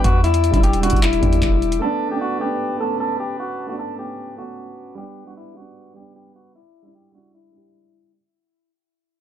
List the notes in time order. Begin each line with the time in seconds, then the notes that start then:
Already playing: G3 B3 D4 B4 D6
0.04 E2 F#4, kick, closed hi-hat
0.24 E4 D5 E6, closed hi-hat
0.34 closed hi-hat
0.44 closed hi-hat
0.51 E1 G3 D4 E4, kick, closed hi-hat
0.57 E4
0.63 G4, closed hi-hat
0.73 closed hi-hat
0.80 G3 D4 F#4, closed hi-hat
0.86 E4, closed hi-hat
0.93 E1, kick, closed hi-hat
1.03 E4, clap, closed hi-hat
1.13 closed hi-hat
1.20 E2 G3 D4, kick, closed hi-hat
1.26 G4
1.33 closed hi-hat
1.42 E1, kick, clap, closed hi-hat
1.62 closed hi-hat
1.72 closed hi-hat
1.79 A3 B3 A4 B4 A5 D6
1.85 D4
2.09 A3 B3 G4
2.14 D4
2.21 F#4
2.38 A3 B3 G4
2.44 D4
2.78 A3 B3 A4
2.84 C#4
3.00 A4
3.20 G4
3.40 F#4
3.67 A3 B3 F#4
3.72 D4
3.79 A4
3.96 A3 B3 G4
4.02 C#4
4.36 A3 B3 F#4
4.41 C#4
4.95 G3 B3 G4 B4
5.01 D4
5.24 G3 B3 F#4
5.30 D4
5.37 E4
5.54 G3 B3 F#4
5.60 D4
5.94 G3 B3 G4
5.99 D4
6.16 G4
6.36 F#4
6.56 E4 D5 E6
6.82 G3 D4 E4
6.88 E4
6.95 G4
7.12 G3 D4 F#4
7.18 E4
7.35 E4
7.51 G3 D4
7.57 G4